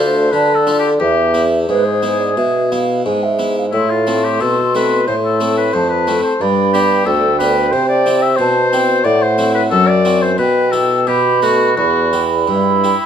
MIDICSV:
0, 0, Header, 1, 5, 480
1, 0, Start_track
1, 0, Key_signature, 0, "minor"
1, 0, Tempo, 683371
1, 707, Time_signature, 4, 2, 24, 8
1, 3105, Tempo, 663717
1, 6457, Key_signature, 1, "minor"
1, 7425, Tempo, 699301
1, 9254, End_track
2, 0, Start_track
2, 0, Title_t, "Flute"
2, 0, Program_c, 0, 73
2, 0, Note_on_c, 0, 77, 58
2, 219, Note_off_c, 0, 77, 0
2, 229, Note_on_c, 0, 81, 62
2, 534, Note_off_c, 0, 81, 0
2, 703, Note_on_c, 0, 76, 47
2, 1108, Note_off_c, 0, 76, 0
2, 1181, Note_on_c, 0, 71, 60
2, 1294, Note_on_c, 0, 72, 51
2, 1305, Note_off_c, 0, 71, 0
2, 1539, Note_on_c, 0, 74, 51
2, 1549, Note_off_c, 0, 72, 0
2, 1652, Note_off_c, 0, 74, 0
2, 1656, Note_on_c, 0, 76, 59
2, 1903, Note_on_c, 0, 77, 57
2, 1914, Note_off_c, 0, 76, 0
2, 2140, Note_off_c, 0, 77, 0
2, 2144, Note_on_c, 0, 80, 60
2, 2269, Note_on_c, 0, 76, 57
2, 2279, Note_off_c, 0, 80, 0
2, 2508, Note_off_c, 0, 76, 0
2, 2513, Note_on_c, 0, 77, 54
2, 2555, Note_off_c, 0, 77, 0
2, 2632, Note_on_c, 0, 84, 64
2, 3909, Note_off_c, 0, 84, 0
2, 4070, Note_on_c, 0, 81, 61
2, 4548, Note_on_c, 0, 83, 62
2, 4558, Note_off_c, 0, 81, 0
2, 5013, Note_off_c, 0, 83, 0
2, 5017, Note_on_c, 0, 79, 65
2, 5957, Note_off_c, 0, 79, 0
2, 5980, Note_on_c, 0, 81, 61
2, 6214, Note_off_c, 0, 81, 0
2, 6217, Note_on_c, 0, 79, 62
2, 6452, Note_off_c, 0, 79, 0
2, 6457, Note_on_c, 0, 78, 67
2, 7204, Note_off_c, 0, 78, 0
2, 7427, Note_on_c, 0, 79, 64
2, 7868, Note_off_c, 0, 79, 0
2, 7894, Note_on_c, 0, 83, 70
2, 8364, Note_off_c, 0, 83, 0
2, 8376, Note_on_c, 0, 83, 63
2, 9254, Note_off_c, 0, 83, 0
2, 9254, End_track
3, 0, Start_track
3, 0, Title_t, "Oboe"
3, 0, Program_c, 1, 68
3, 0, Note_on_c, 1, 72, 62
3, 226, Note_on_c, 1, 71, 72
3, 236, Note_off_c, 1, 72, 0
3, 385, Note_on_c, 1, 69, 64
3, 396, Note_off_c, 1, 71, 0
3, 546, Note_off_c, 1, 69, 0
3, 557, Note_on_c, 1, 67, 59
3, 626, Note_off_c, 1, 67, 0
3, 702, Note_on_c, 1, 67, 74
3, 1009, Note_off_c, 1, 67, 0
3, 1190, Note_on_c, 1, 68, 65
3, 2120, Note_off_c, 1, 68, 0
3, 2615, Note_on_c, 1, 64, 69
3, 2738, Note_on_c, 1, 65, 60
3, 2749, Note_off_c, 1, 64, 0
3, 2981, Note_on_c, 1, 67, 64
3, 2991, Note_off_c, 1, 65, 0
3, 3099, Note_on_c, 1, 69, 75
3, 3110, Note_off_c, 1, 67, 0
3, 3343, Note_off_c, 1, 69, 0
3, 3350, Note_on_c, 1, 71, 73
3, 3573, Note_off_c, 1, 71, 0
3, 3577, Note_on_c, 1, 72, 74
3, 3633, Note_off_c, 1, 72, 0
3, 3705, Note_on_c, 1, 69, 63
3, 3936, Note_off_c, 1, 69, 0
3, 3940, Note_on_c, 1, 71, 69
3, 4058, Note_on_c, 1, 72, 72
3, 4068, Note_off_c, 1, 71, 0
3, 4165, Note_off_c, 1, 72, 0
3, 4170, Note_on_c, 1, 71, 67
3, 4413, Note_off_c, 1, 71, 0
3, 4416, Note_on_c, 1, 72, 65
3, 4547, Note_on_c, 1, 74, 81
3, 4558, Note_off_c, 1, 72, 0
3, 4773, Note_off_c, 1, 74, 0
3, 4778, Note_on_c, 1, 67, 76
3, 5016, Note_on_c, 1, 69, 77
3, 5027, Note_off_c, 1, 67, 0
3, 5247, Note_off_c, 1, 69, 0
3, 5251, Note_on_c, 1, 71, 76
3, 5489, Note_on_c, 1, 72, 82
3, 5500, Note_off_c, 1, 71, 0
3, 5607, Note_off_c, 1, 72, 0
3, 5611, Note_on_c, 1, 74, 80
3, 5854, Note_on_c, 1, 76, 76
3, 5865, Note_off_c, 1, 74, 0
3, 5955, Note_on_c, 1, 72, 84
3, 5966, Note_off_c, 1, 76, 0
3, 6448, Note_on_c, 1, 74, 100
3, 6459, Note_off_c, 1, 72, 0
3, 6576, Note_on_c, 1, 72, 79
3, 6587, Note_off_c, 1, 74, 0
3, 6807, Note_off_c, 1, 72, 0
3, 6811, Note_on_c, 1, 71, 80
3, 6866, Note_off_c, 1, 71, 0
3, 6932, Note_on_c, 1, 69, 95
3, 7048, Note_on_c, 1, 74, 84
3, 7059, Note_off_c, 1, 69, 0
3, 7299, Note_on_c, 1, 72, 73
3, 7310, Note_off_c, 1, 74, 0
3, 7413, Note_off_c, 1, 72, 0
3, 7417, Note_on_c, 1, 71, 75
3, 7644, Note_on_c, 1, 69, 74
3, 7654, Note_off_c, 1, 71, 0
3, 7894, Note_on_c, 1, 67, 72
3, 7905, Note_off_c, 1, 69, 0
3, 8128, Note_off_c, 1, 67, 0
3, 8132, Note_on_c, 1, 66, 64
3, 8364, Note_off_c, 1, 66, 0
3, 8368, Note_on_c, 1, 66, 72
3, 8681, Note_off_c, 1, 66, 0
3, 8849, Note_on_c, 1, 64, 56
3, 9254, Note_off_c, 1, 64, 0
3, 9254, End_track
4, 0, Start_track
4, 0, Title_t, "Harpsichord"
4, 0, Program_c, 2, 6
4, 0, Note_on_c, 2, 38, 44
4, 0, Note_on_c, 2, 62, 36
4, 0, Note_on_c, 2, 65, 37
4, 0, Note_on_c, 2, 69, 38
4, 200, Note_off_c, 2, 38, 0
4, 233, Note_on_c, 2, 50, 43
4, 333, Note_off_c, 2, 62, 0
4, 334, Note_off_c, 2, 65, 0
4, 335, Note_off_c, 2, 69, 0
4, 469, Note_on_c, 2, 62, 34
4, 472, Note_on_c, 2, 65, 35
4, 476, Note_on_c, 2, 69, 37
4, 641, Note_off_c, 2, 62, 0
4, 643, Note_off_c, 2, 65, 0
4, 645, Note_off_c, 2, 69, 0
4, 683, Note_off_c, 2, 50, 0
4, 702, Note_on_c, 2, 40, 45
4, 942, Note_on_c, 2, 59, 36
4, 944, Note_on_c, 2, 64, 36
4, 1156, Note_off_c, 2, 40, 0
4, 1187, Note_on_c, 2, 44, 40
4, 1289, Note_off_c, 2, 59, 0
4, 1290, Note_off_c, 2, 64, 0
4, 1422, Note_on_c, 2, 59, 37
4, 1426, Note_on_c, 2, 64, 37
4, 1596, Note_off_c, 2, 59, 0
4, 1599, Note_off_c, 2, 64, 0
4, 1639, Note_off_c, 2, 44, 0
4, 1667, Note_on_c, 2, 47, 38
4, 1911, Note_on_c, 2, 59, 30
4, 1912, Note_on_c, 2, 64, 39
4, 2118, Note_off_c, 2, 47, 0
4, 2149, Note_on_c, 2, 44, 44
4, 2255, Note_off_c, 2, 59, 0
4, 2255, Note_off_c, 2, 64, 0
4, 2380, Note_on_c, 2, 59, 33
4, 2384, Note_on_c, 2, 64, 37
4, 2555, Note_off_c, 2, 59, 0
4, 2558, Note_off_c, 2, 64, 0
4, 2600, Note_off_c, 2, 44, 0
4, 2618, Note_on_c, 2, 45, 43
4, 2858, Note_on_c, 2, 57, 34
4, 2860, Note_on_c, 2, 60, 34
4, 2863, Note_on_c, 2, 64, 33
4, 3071, Note_off_c, 2, 45, 0
4, 3094, Note_on_c, 2, 47, 41
4, 3204, Note_off_c, 2, 57, 0
4, 3205, Note_off_c, 2, 60, 0
4, 3207, Note_off_c, 2, 64, 0
4, 3341, Note_on_c, 2, 57, 39
4, 3345, Note_on_c, 2, 60, 36
4, 3348, Note_on_c, 2, 64, 39
4, 3515, Note_off_c, 2, 57, 0
4, 3517, Note_off_c, 2, 60, 0
4, 3519, Note_off_c, 2, 64, 0
4, 3551, Note_off_c, 2, 47, 0
4, 3581, Note_on_c, 2, 45, 43
4, 3816, Note_on_c, 2, 57, 32
4, 3819, Note_on_c, 2, 60, 35
4, 3822, Note_on_c, 2, 64, 39
4, 4033, Note_off_c, 2, 45, 0
4, 4056, Note_on_c, 2, 41, 43
4, 4165, Note_off_c, 2, 57, 0
4, 4167, Note_off_c, 2, 60, 0
4, 4169, Note_off_c, 2, 64, 0
4, 4300, Note_on_c, 2, 57, 34
4, 4304, Note_on_c, 2, 60, 33
4, 4306, Note_on_c, 2, 64, 37
4, 4344, Note_off_c, 2, 41, 0
4, 4474, Note_off_c, 2, 57, 0
4, 4477, Note_off_c, 2, 60, 0
4, 4478, Note_off_c, 2, 64, 0
4, 4545, Note_on_c, 2, 43, 41
4, 4783, Note_on_c, 2, 59, 36
4, 4787, Note_on_c, 2, 62, 35
4, 4789, Note_on_c, 2, 67, 39
4, 4997, Note_off_c, 2, 43, 0
4, 5020, Note_on_c, 2, 38, 46
4, 5130, Note_off_c, 2, 59, 0
4, 5133, Note_off_c, 2, 62, 0
4, 5134, Note_off_c, 2, 67, 0
4, 5261, Note_on_c, 2, 59, 39
4, 5263, Note_on_c, 2, 62, 44
4, 5265, Note_on_c, 2, 67, 43
4, 5435, Note_off_c, 2, 59, 0
4, 5436, Note_off_c, 2, 62, 0
4, 5437, Note_off_c, 2, 67, 0
4, 5473, Note_off_c, 2, 38, 0
4, 5498, Note_on_c, 2, 48, 46
4, 5738, Note_on_c, 2, 60, 42
4, 5742, Note_on_c, 2, 64, 38
4, 5748, Note_on_c, 2, 67, 45
4, 5948, Note_off_c, 2, 48, 0
4, 5973, Note_on_c, 2, 47, 48
4, 6082, Note_off_c, 2, 60, 0
4, 6085, Note_off_c, 2, 64, 0
4, 6089, Note_off_c, 2, 67, 0
4, 6220, Note_on_c, 2, 60, 40
4, 6223, Note_on_c, 2, 64, 40
4, 6226, Note_on_c, 2, 67, 40
4, 6392, Note_off_c, 2, 60, 0
4, 6394, Note_off_c, 2, 64, 0
4, 6395, Note_off_c, 2, 67, 0
4, 6425, Note_off_c, 2, 47, 0
4, 6451, Note_on_c, 2, 45, 53
4, 6692, Note_on_c, 2, 60, 39
4, 6697, Note_on_c, 2, 64, 38
4, 6701, Note_on_c, 2, 66, 40
4, 6905, Note_off_c, 2, 45, 0
4, 6934, Note_on_c, 2, 42, 48
4, 7040, Note_off_c, 2, 60, 0
4, 7043, Note_off_c, 2, 64, 0
4, 7046, Note_off_c, 2, 66, 0
4, 7176, Note_on_c, 2, 60, 42
4, 7178, Note_on_c, 2, 64, 44
4, 7184, Note_on_c, 2, 66, 47
4, 7353, Note_off_c, 2, 60, 0
4, 7354, Note_off_c, 2, 64, 0
4, 7358, Note_off_c, 2, 66, 0
4, 7392, Note_off_c, 2, 42, 0
4, 7417, Note_on_c, 2, 47, 50
4, 7655, Note_on_c, 2, 64, 37
4, 7656, Note_on_c, 2, 67, 40
4, 7826, Note_off_c, 2, 64, 0
4, 7827, Note_off_c, 2, 67, 0
4, 7864, Note_off_c, 2, 47, 0
4, 7891, Note_on_c, 2, 47, 47
4, 8132, Note_on_c, 2, 63, 36
4, 8133, Note_on_c, 2, 57, 36
4, 8139, Note_on_c, 2, 66, 39
4, 8306, Note_off_c, 2, 57, 0
4, 8306, Note_off_c, 2, 63, 0
4, 8310, Note_off_c, 2, 66, 0
4, 8345, Note_off_c, 2, 47, 0
4, 8373, Note_on_c, 2, 40, 41
4, 8617, Note_on_c, 2, 64, 33
4, 8618, Note_on_c, 2, 67, 38
4, 8833, Note_off_c, 2, 40, 0
4, 8853, Note_on_c, 2, 43, 41
4, 8966, Note_off_c, 2, 64, 0
4, 8967, Note_off_c, 2, 67, 0
4, 9103, Note_on_c, 2, 64, 33
4, 9108, Note_on_c, 2, 67, 38
4, 9144, Note_off_c, 2, 43, 0
4, 9254, Note_off_c, 2, 64, 0
4, 9254, Note_off_c, 2, 67, 0
4, 9254, End_track
5, 0, Start_track
5, 0, Title_t, "Bassoon"
5, 0, Program_c, 3, 70
5, 0, Note_on_c, 3, 38, 60
5, 198, Note_off_c, 3, 38, 0
5, 229, Note_on_c, 3, 50, 54
5, 699, Note_off_c, 3, 50, 0
5, 709, Note_on_c, 3, 40, 63
5, 1177, Note_off_c, 3, 40, 0
5, 1189, Note_on_c, 3, 44, 50
5, 1658, Note_off_c, 3, 44, 0
5, 1665, Note_on_c, 3, 47, 53
5, 2135, Note_off_c, 3, 47, 0
5, 2144, Note_on_c, 3, 44, 49
5, 2616, Note_off_c, 3, 44, 0
5, 2626, Note_on_c, 3, 45, 66
5, 3094, Note_off_c, 3, 45, 0
5, 3102, Note_on_c, 3, 47, 55
5, 3583, Note_on_c, 3, 45, 57
5, 3594, Note_off_c, 3, 47, 0
5, 4057, Note_off_c, 3, 45, 0
5, 4062, Note_on_c, 3, 41, 48
5, 4369, Note_off_c, 3, 41, 0
5, 4541, Note_on_c, 3, 43, 66
5, 4995, Note_off_c, 3, 43, 0
5, 5017, Note_on_c, 3, 38, 65
5, 5503, Note_on_c, 3, 48, 66
5, 5514, Note_off_c, 3, 38, 0
5, 5975, Note_off_c, 3, 48, 0
5, 5980, Note_on_c, 3, 47, 56
5, 6448, Note_off_c, 3, 47, 0
5, 6458, Note_on_c, 3, 45, 68
5, 6928, Note_off_c, 3, 45, 0
5, 6934, Note_on_c, 3, 42, 61
5, 7411, Note_off_c, 3, 42, 0
5, 7421, Note_on_c, 3, 47, 66
5, 7883, Note_off_c, 3, 47, 0
5, 7898, Note_on_c, 3, 47, 54
5, 8366, Note_off_c, 3, 47, 0
5, 8373, Note_on_c, 3, 40, 59
5, 8850, Note_off_c, 3, 40, 0
5, 8863, Note_on_c, 3, 43, 52
5, 9170, Note_off_c, 3, 43, 0
5, 9254, End_track
0, 0, End_of_file